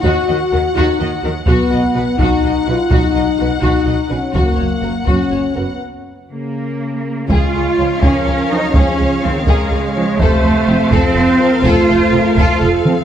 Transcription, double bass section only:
X:1
M:6/8
L:1/8
Q:3/8=83
K:Gb
V:1 name="Double bass section" clef=bass
E,, E,, E,, E,, E,, E,, | =B,,, B,,, B,,, B,,, B,,, B,,, | =B,,, B,,, B,,, B,,, B,,, B,,, | G,,, G,,, G,,, G,,, G,,, G,,, |
z6 | [K:Db] D,, D,, D,, D,, D,, z | D,, D,, D,, D,, D,, z | F,,, F,,, F,,, F,,, F,,, z |
F,,, F,,, F,,, F,,, F,,, z |]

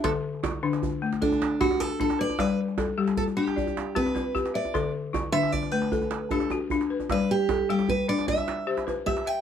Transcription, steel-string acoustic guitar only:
X:1
M:12/8
L:1/8
Q:3/8=102
K:G
V:1 name="Steel-string acoustic guitar"
A z4 z D2 F A A d | B z3 A G3 B3 d- | d z2 e d B3 A z3 | B G2 G B d e3 z e g |]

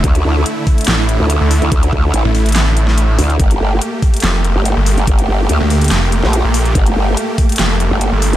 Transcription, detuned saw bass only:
X:1
M:4/4
L:1/16
Q:"Swing 16ths" 1/4=143
K:Gdor
V:1 name="Detuned saw bass" clef=bass
z8 A,,,3 z2 D,,2 z | z4 z A,,,3 A,,,6 z2 | z8 F,,,3 z2 G,,,2 z | z4 z D,,3 F,,,3 z2 B,,,3 |
z8 F,,,3 z2 G,,,2 z |]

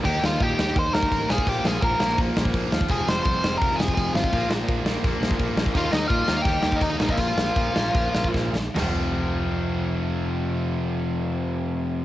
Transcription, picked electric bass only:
X:1
M:4/4
L:1/8
Q:1/4=168
K:Bbdor
V:1 name="Picked electric bass" clef=bass
E,, E,, B,, E,, E,, E,, =A,,, B,,, | B,,, B,,, B,, B,,, B,,, B,,, B,,, E,, | F,,, F,,, C,, F,,, F,,, F,,, F,,, A,,, | B,,, B,,, B,, B,,, B,,, B,,, B,,, B,,, |
E,, E,, B,, E,, E,, E,, E,, B,,, | B,,, B,,, B,, B,,, B,,, B,,, B,,, B,,, | F,,,8- | F,,,8 |]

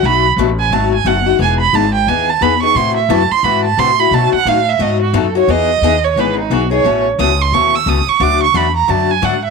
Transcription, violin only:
X:1
M:4/4
L:1/8
Q:"Swing" 1/4=176
K:E
V:1 name="Violin"
b z2 g a g f2 | g b a =g ^g a b c' | =c' e a c' b a c' b | a f =f e d ^F A c |
d3 c B D F c- | c z d' =c' ^c' e' d' c' | =d' c' b ^a =a g f e |]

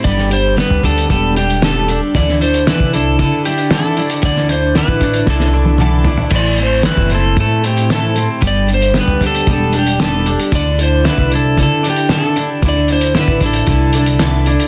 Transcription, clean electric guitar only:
X:1
M:4/4
L:1/8
Q:1/4=114
K:Dmix
V:1 name="Clean electric guitar"
G,2 B, D G, D A D | D,2 E D D, D A D | D,2 E D D, D A D | A,,2 E C A, C A C |
G,2 B, D G, D A D | D,2 E D D, D A D | D,2 E D D, D A D |]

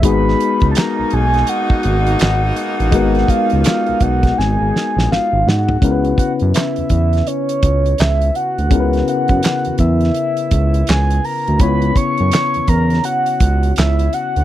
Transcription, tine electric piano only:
X:1
M:4/4
L:1/8
Q:"Swing 16ths" 1/4=83
K:C#dor
V:1 name="Tine electric piano"
[G,B,DFG]8 | [G,B,DFA]8 | [C,B,CEAB]8 | [C,B,CEAB]8 |
[C,B,CEc]8 |]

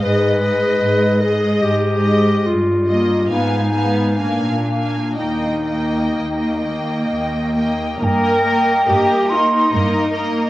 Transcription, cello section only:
X:1
M:3/4
L:1/8
Q:1/4=70
K:Eb
V:1 name="Cello section" clef=bass
A,,2 A,,2 A,,2 | G,,2 A,,2 B,,2 | E,,2 E,,2 E,,2 | B2 G E3 |]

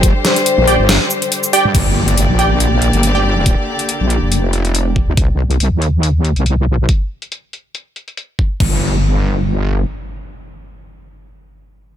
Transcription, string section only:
X:1
M:4/4
L:1/8
Q:"Swing 16ths" 1/4=140
K:Gm
V:1 name="String section"
[D,G,Gc]8 | [D,B,Gd]8- | [D,B,Gd]8 | z8 |
z8 | z8 | z8 |]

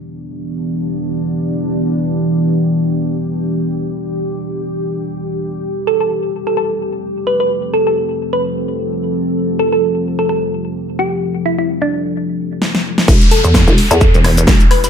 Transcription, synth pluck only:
X:1
M:4/4
L:1/16
Q:"Swing 16ths" 1/4=129
K:Ephr
V:1 name="Synth pluck"
z16 | z16 | z16 | z2 A A z3 A A z4 z B B |
z2 A A z3 B4 z4 z | z2 A A z3 A A z4 z G z | z2 E E z D6 z4 z | z2 A A z3 A A z4 z B B |]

